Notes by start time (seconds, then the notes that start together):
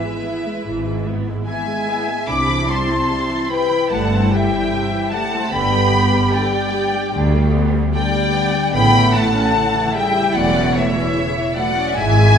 Already playing: G#2 E3 B3 E4 B4 E5
0.05 G#3
0.24 B3 G#4
0.46 G#3
0.65 G#1 G#2 E3
0.86 G#3
1.06 B3
1.27 G#3
1.46 E3 G#3 E4 E5 G#5
1.67 G#3
1.88 B3 G#4
2.08 G#3
2.27 C2 C3 D4 E4 B5 D6
2.49 E3
2.68 G3 C4 A5 C6
2.89 C4
3.10 G3 E4
3.30 E3
3.49 C3 G4 B4 G5 B5
3.71 E3
3.89 G1 G2 G3 A3 F#5 A5
4.11 C4
4.30 G3 C4 E5 G5
4.52 E3
4.72 C3 E4
4.92 E3
5.11 G3 A3 G4 F#5 A5
5.34 C4
5.50 G1 G2 D3 B3 G4 G5 B5
5.73 G3
5.92 B3
6.13 G3
6.32 D3 G3 D4 D5 G5
6.55 G3
6.74 B3 G4
6.95 G3
7.14 D2 D3
7.35 G3
7.54 B3
7.73 G3
7.93 D3 G3 D4 D5 G5
8.14 G3
8.34 B3 G4
8.54 G3
8.73 A1 A2 C#3 B3 E4 G5 B5
8.95 E3
9.13 A3 F#5 A5
9.36 C#4
9.55 C#3 A3
9.75 E3
9.94 C#3 G3 E4 E5 G5
10.15 E3
10.34 E1 E2 E3 F#3 A3 D5 F#5
10.55 C#4
10.75 E3 A3 C#5 E5
10.95 E3
11.16 C#3
11.35 E3
11.55 F#3 A3 E4 D5 F#5
11.75 C#4
11.95 G#1 G#2 E3 G#3 E4 E5 G#5
12.15 G#3